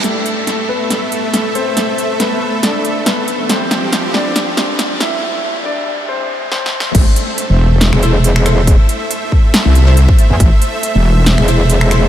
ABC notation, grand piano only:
X:1
M:4/4
L:1/8
Q:"Swing 16ths" 1/4=139
K:Am
V:1 name="Grand piano"
[A,A]3 [B,B]4 [Cc]- | [Cc]2 [B,B]2 [Dd]2 [B,B]2 | [Cc]3 [Dd]4 [Ee]- | [Ee]2 [Dd]2 [Cc]2 [Cc]2 |
z8 | z8 | z8 |]